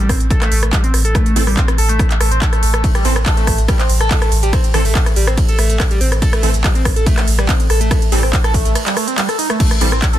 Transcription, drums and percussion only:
0.09 kick medium
0.09 cross-stick medium
0.09 open hi-hat loud
0.20 closed hi-hat medium
0.30 kick loud
0.30 closed hi-hat medium
0.42 cross-stick medium
0.42 clap medium
0.42 closed hi-hat medium
0.52 open hi-hat loud
0.63 cross-stick medium
0.63 closed hi-hat medium
0.73 kick loud
0.73 clap loud
0.73 closed hi-hat medium
0.84 closed hi-hat medium
0.94 cross-stick medium
0.94 open hi-hat loud
1.05 closed hi-hat medium
1.15 kick loud
1.15 cross-stick loud
1.15 closed hi-hat medium
1.26 closed hi-hat medium
1.36 open hi-hat loud
1.47 cross-stick medium
1.47 open hi-hat medium
1.57 kick loud
1.57 clap loud
1.57 closed hi-hat medium
1.68 cross-stick loud
1.68 closed hi-hat medium
1.78 open hi-hat loud
1.89 closed hi-hat medium
1.99 kick loud
1.99 cross-stick medium
1.99 closed hi-hat medium
2.11 clap medium
2.11 closed hi-hat medium
2.21 cross-stick medium
2.21 open hi-hat loud
2.32 closed hi-hat medium
2.42 kick loud
2.42 clap loud
2.42 closed hi-hat medium
2.53 cross-stick medium
2.53 closed hi-hat medium
2.63 open hi-hat loud
2.74 cross-stick loud
2.74 closed hi-hat medium
2.84 kick loud
2.84 closed hi-hat medium
2.84 ride medium
2.95 cross-stick medium
2.95 closed hi-hat medium
3.05 open hi-hat loud
3.16 cross-stick loud
3.16 closed hi-hat medium
3.26 kick loud
3.26 clap loud
3.26 closed hi-hat medium
3.26 ride medium
3.37 closed hi-hat medium
3.47 kick medium
3.47 cross-stick medium
3.47 open hi-hat loud
3.58 closed hi-hat medium
3.68 kick loud
3.68 cross-stick loud
3.68 closed hi-hat medium
3.68 ride medium
3.79 clap medium
3.79 closed hi-hat medium
3.90 open hi-hat loud
4.01 cross-stick medium
4.01 closed hi-hat soft
4.11 kick loud
4.11 clap loud
4.11 closed hi-hat medium
4.11 ride medium
4.22 cross-stick loud
4.22 closed hi-hat medium
4.32 open hi-hat loud
4.43 closed hi-hat medium
4.53 kick loud
4.53 cross-stick medium
4.53 closed hi-hat medium
4.53 ride medium
4.64 closed hi-hat medium
4.74 cross-stick loud
4.74 open hi-hat loud
4.85 open hi-hat medium
4.95 kick loud
4.95 clap loud
4.95 closed hi-hat medium
4.95 ride medium
5.06 cross-stick medium
5.06 closed hi-hat soft
5.16 open hi-hat loud
5.27 cross-stick loud
5.27 closed hi-hat medium
5.37 kick loud
5.37 closed hi-hat medium
5.37 ride medium
5.48 closed hi-hat medium
5.59 cross-stick medium
5.59 open hi-hat loud
5.70 closed hi-hat medium
5.80 kick loud
5.80 cross-stick loud
5.80 clap loud
5.80 closed hi-hat medium
5.80 ride medium
5.91 closed hi-hat soft
6.01 open hi-hat loud
6.12 cross-stick medium
6.12 closed hi-hat medium
6.22 kick loud
6.22 closed hi-hat medium
6.22 ride medium
6.33 cross-stick loud
6.33 closed hi-hat medium
6.43 open hi-hat loud
6.54 closed hi-hat medium
6.64 kick loud
6.64 cross-stick medium
6.64 clap loud
6.64 closed hi-hat medium
6.64 ride medium
6.75 closed hi-hat medium
6.85 kick medium
6.85 cross-stick loud
6.85 open hi-hat loud
6.96 closed hi-hat medium
7.06 kick loud
7.06 closed hi-hat medium
7.06 ride medium
7.17 cross-stick medium
7.17 clap medium
7.17 closed hi-hat medium
7.28 open hi-hat loud
7.39 cross-stick loud
7.39 closed hi-hat medium
7.49 kick loud
7.49 clap loud
7.49 closed hi-hat medium
7.49 ride medium
7.60 closed hi-hat soft
7.70 cross-stick medium
7.70 open hi-hat medium
7.81 closed hi-hat medium
7.91 kick loud
7.91 cross-stick medium
7.91 closed hi-hat medium
7.91 ride medium
8.02 closed hi-hat medium
8.12 open hi-hat loud
8.23 cross-stick medium
8.23 open hi-hat medium
8.33 kick loud
8.33 clap loud
8.33 closed hi-hat medium
8.33 ride medium
8.44 cross-stick medium
8.44 closed hi-hat medium
8.54 kick medium
8.54 open hi-hat loud
8.65 closed hi-hat medium
8.75 cross-stick medium
8.75 closed hi-hat medium
8.75 ride medium
8.86 clap medium
8.86 closed hi-hat medium
8.97 cross-stick medium
8.97 open hi-hat loud
9.08 closed hi-hat medium
9.18 clap loud
9.18 closed hi-hat medium
9.18 ride medium
9.29 cross-stick medium
9.29 closed hi-hat medium
9.39 open hi-hat loud
9.50 cross-stick loud
9.50 closed hi-hat medium
9.60 kick loud
9.60 closed hi-hat medium
9.60 crash medium
9.60 ride medium
9.71 cross-stick medium
9.71 closed hi-hat medium
9.81 open hi-hat loud
9.92 cross-stick medium
9.92 closed hi-hat medium
10.02 kick loud
10.02 clap loud
10.02 closed hi-hat medium
10.02 ride medium
10.13 closed hi-hat medium

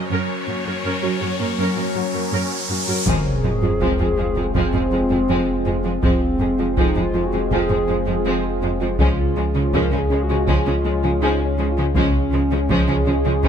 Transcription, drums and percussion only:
3.06 taiko medium
3.81 taiko medium
4.55 taiko medium
6.03 taiko medium
6.77 taiko medium
7.51 taiko medium
8.99 taiko medium
9.73 taiko medium
10.47 taiko medium
11.95 taiko medium
12.69 taiko medium
13.43 taiko medium

